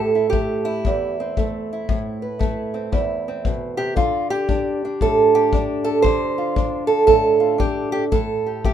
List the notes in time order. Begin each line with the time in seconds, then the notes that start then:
Already playing: A2 A3 C4 G4 A4
0.15 E4
0.30 A3 G4, kick
0.65 E4
0.85 E2, kick
1.20 C4
1.37 A3, kick
1.73 E4
1.89 A2, kick
2.22 B4
2.39 A3 E4, kick
2.74 C4
2.92 E2 E4, kick
3.28 C4
3.45 B2, kick
3.77 C3 G4
3.96 D3 F4, kick
4.30 G4
4.48 D4, kick
4.85 D4
5.01 A2 A4, kick
5.35 G4
5.53 D4, kick
5.84 A4
6.02 D3 C5, kick
6.38 F4
6.56 D4, kick
6.87 A4
7.07 A2 A4, kick
7.40 F4
7.58 D4 G4, kick
7.92 G4
8.12 A2 A4, kick
8.46 G4
8.65 A3 G4, kick